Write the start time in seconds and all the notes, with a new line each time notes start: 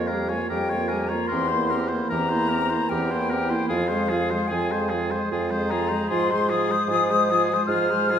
Already playing: F2 A#3 F4 D#5
0.07 A#4 F5
0.11 G3 G4
0.29 F4 C#5 G#5
0.34 A#3
0.49 F2 G3 G4 A#4 G5
0.69 F4 C#5
0.74 A#3
0.88 G4 A#4 G#5
0.93 G3
1.07 F4 C#5 A#5
1.12 A#3
1.27 G4 A#4 C6
1.32 E2 C4
1.48 E4 C5
1.52 A#3
1.70 C4 G4 A#4
1.88 E4 C5
1.94 A#3
2.09 E2 G4 A#4 A#5
2.15 C4
2.29 E4 C5
2.35 A#3
2.49 G4 A#4
2.55 C4
2.70 E4 C5
2.74 A#3
2.89 E2 G4 A#4 G5
2.94 C4
3.10 A#3 E4 C5
3.30 C4 G4 A#4
3.49 A#3 E4 C5
3.69 F2 F3 F4 G#4 F5
3.88 G#4 C5
3.92 G#3
4.09 F3 F4 G#4
4.30 G#3 G#4 C5
4.48 F2 G#4 G#5
4.52 F3 F4
4.71 G#3 G#4 C5
4.89 F3 F4 G#4
5.11 G#3 G#4 C5
5.31 F2 F3 F4 G#4
5.50 G#3 G#4 C5
5.68 G#4 A#5
5.72 F3 F4
5.88 G#3 C5
5.93 G#4
6.08 G#2 F3 F4 G#4 C6
6.30 G#3 G#4 C5
6.49 F3 F4 G#4 D#6
6.69 G#3 G#4 C5
6.88 G#2 F3 F4 G#4
7.10 G#3 G#4 C5
7.30 F3 F4 G#4
7.50 G#3 G#4 C5
7.67 G#2 F4 G#4 F6
7.73 F3
7.89 G#4 C5
7.93 G#3
8.08 F3 F4 G#4